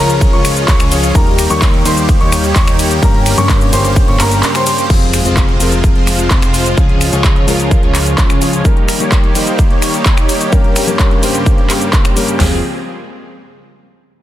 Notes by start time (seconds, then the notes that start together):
Already playing: C#2 C#3 F3 G#3 C#4 F4 G#4 A#4 A#5
0.00 C#4 A#4
0.10 closed hi-hat, shaker
0.21 kick, closed hi-hat, ride, shaker
0.33 C#2 C#4 F4 C#5 C#6, closed hi-hat
0.45 finger snap, open hi-hat, ride, shaker
0.57 closed hi-hat, shaker
0.68 C#2 F4 C#5 C#6, kick, clap, closed hi-hat, ride, shaker
0.80 finger snap, closed hi-hat, shaker
0.91 F3 G#3 C#4 G#4, open hi-hat, ride, shaker
1.03 closed hi-hat, shaker
1.15 D#2 D#3 G3 A#3 D#4 G4 A#4 A#5, kick, closed hi-hat, ride, shaker
1.27 closed hi-hat
1.39 finger snap, open hi-hat, ride, shaker
1.50 D#2 G3 A#3 D#4 G4 A#4 C#5 C#6, closed hi-hat, shaker
1.62 kick, clap, closed hi-hat, ride, shaker
1.74 closed hi-hat
1.84 D#2 G3 A#3 D#4 G4 A#4 C5 C6, open hi-hat, ride, shaker
1.97 closed hi-hat, shaker
2.09 kick, closed hi-hat, ride, shaker
2.21 D#2 D#4 G4 C#5 C#6, closed hi-hat
2.32 finger snap, open hi-hat, ride, shaker
2.44 closed hi-hat, shaker
2.56 D#2 D#4 C#6, kick, clap, closed hi-hat, ride, shaker
2.68 finger snap, closed hi-hat, shaker
2.79 open hi-hat, ride, shaker
2.91 closed hi-hat, shaker
3.02 G1 G2 C#3 G3 A#3 C#4 G4 A#4 A#5, kick, closed hi-hat, ride, shaker
3.14 closed hi-hat
3.26 finger snap, open hi-hat, ride, shaker
3.37 G1 G2 G3 A#3 C#4 G4 A#4 C#5 C#6, closed hi-hat, shaker
3.49 kick, clap, closed hi-hat, ride, shaker
3.61 closed hi-hat, shaker
3.72 G1 G2 G3 A#3 C#4 G4 C5 C6, open hi-hat, ride, shaker
3.85 closed hi-hat, shaker
3.96 kick, closed hi-hat, ride, shaker
4.08 G1 C#4 G4 C#5 C#6, closed hi-hat
4.20 G1 C#4 G4 A#4 A#5, finger snap, clap, open hi-hat, ride, shaker
4.32 closed hi-hat, shaker
4.43 clap, closed hi-hat, ride, shaker
4.55 C#4 G4 C5 C6, finger snap, closed hi-hat, shaker
4.67 C#4 G4 C5 C6, open hi-hat, ride, shaker
4.78 closed hi-hat, shaker
4.89 F1 C3 F3 G#3 C4 F4 G#4, kick, closed hi-hat, crash, impact, shaker
5.02 closed hi-hat
5.14 finger snap, open hi-hat, shaker
5.25 F1 F3 G#3 C4 F4 G#4 C5, closed hi-hat, shaker
5.37 kick, clap, closed hi-hat, shaker
5.49 closed hi-hat
5.59 F1 F3 G#3 C4 F4 G#4 A#4, open hi-hat, shaker
5.72 closed hi-hat, shaker
5.84 kick, closed hi-hat, shaker
5.96 F1 C4 F4 C5, closed hi-hat
6.07 finger snap, open hi-hat, shaker
6.19 closed hi-hat, shaker
6.31 F1, kick, clap, closed hi-hat, shaker
6.42 finger snap, closed hi-hat, shaker
6.54 open hi-hat, shaker
6.66 closed hi-hat, shaker
6.77 C#2 C#3 F3 G#3 C#4 F4 G#4, kick, closed hi-hat, shaker
6.89 closed hi-hat
7.01 finger snap, open hi-hat, shaker
7.12 C#2 F3 G#3 C#4 F4 G#4 C#5, closed hi-hat, shaker
7.24 kick, clap, closed hi-hat, shaker
7.36 closed hi-hat
7.47 C#2 F3 G#3 C#4 F4 A#4, open hi-hat, shaker
7.60 closed hi-hat, shaker
7.71 kick, closed hi-hat, shaker
7.83 C#2 C#4 F4 C#5, closed hi-hat
7.95 finger snap, clap, open hi-hat, shaker
8.06 closed hi-hat, shaker
8.18 C#2 C#4 F4 C#5, kick, clap, closed hi-hat, shaker
8.30 finger snap, closed hi-hat, shaker
8.41 F3 G#3 C#4 G#4, open hi-hat, shaker
8.53 closed hi-hat, shaker
8.65 D#3 G3 A#3 D#4 G4 A#4, kick, closed hi-hat, shaker
8.77 closed hi-hat
8.89 finger snap, open hi-hat, shaker
9.00 G3 A#3 D#4 G4 A#4 C#5, closed hi-hat, shaker
9.12 kick, clap, closed hi-hat, shaker
9.24 closed hi-hat
9.34 G3 A#3 D#4 G4 A#4 C5, open hi-hat, shaker
9.47 closed hi-hat, shaker
9.59 kick, closed hi-hat, shaker
9.70 D#4 G4 C#5, closed hi-hat
9.82 finger snap, open hi-hat, shaker
9.94 closed hi-hat, shaker
10.06 D#4 G4 C#5, kick, clap, closed hi-hat, shaker
10.17 finger snap, closed hi-hat, shaker
10.29 open hi-hat, shaker
10.41 closed hi-hat, shaker
10.52 G2 C#3 G3 A#3 C#4 G4 A#4, kick, closed hi-hat, shaker
10.64 closed hi-hat
10.76 finger snap, open hi-hat, shaker
10.87 G2 G3 A#3 C#4 G4 A#4 C#5, closed hi-hat, shaker
10.99 kick, clap, closed hi-hat, shaker
11.11 closed hi-hat
11.22 G2 G3 A#3 C#4 G4 C5, open hi-hat, shaker
11.35 closed hi-hat, shaker
11.46 kick, closed hi-hat, shaker
11.58 C#4 G4 C#5, closed hi-hat
11.70 C#4 G4 A#4, finger snap, clap, open hi-hat, shaker
11.82 closed hi-hat, shaker
11.93 kick, clap, closed hi-hat, shaker
12.05 C#4 G4 C5, finger snap, closed hi-hat, shaker
12.16 G3 A#3 C#4 G4 A#4 C5, open hi-hat, shaker
12.28 closed hi-hat, shaker
12.38 F1 F3 G#3 C4 F4 G#4, snare, floor tom, open hi-hat